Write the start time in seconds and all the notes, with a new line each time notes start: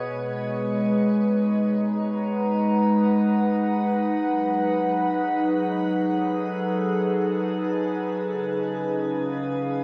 Already playing: B2 B3 G#4 B4 C#5 D#5
0.09 G#3
0.25 D#4
1.69 A#5
1.92 B4 F#5
4.18 F#3
4.65 G#4
6.01 A4
8.28 C#3
8.43 C#4
8.74 B4
9.08 F5